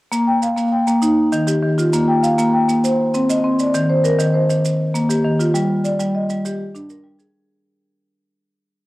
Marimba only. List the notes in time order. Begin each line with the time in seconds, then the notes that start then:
0.12 A#3
0.27 G5
0.42 F5
0.57 A#3
0.72 G5
0.87 A#3
1.02 D#4
1.32 D#3
1.47 G4
1.63 D#3
1.78 F4
1.93 A#3
2.08 G5
2.23 F5
2.38 A#3
2.53 G5
2.69 A#3
2.84 C5
3.14 C4
3.29 D#5
3.44 C4
3.59 D5
3.74 D#3
3.89 C5
4.04 A#4
4.19 D#3
4.34 C5
4.49 D#3
4.94 A#3
5.09 G4
5.24 D#3
5.39 F4
5.54 G3
5.84 D5
5.99 G3
6.15 D#5
6.30 G3
6.45 G4
6.75 D4
6.90 A#4
7.04 G3
7.19 G#4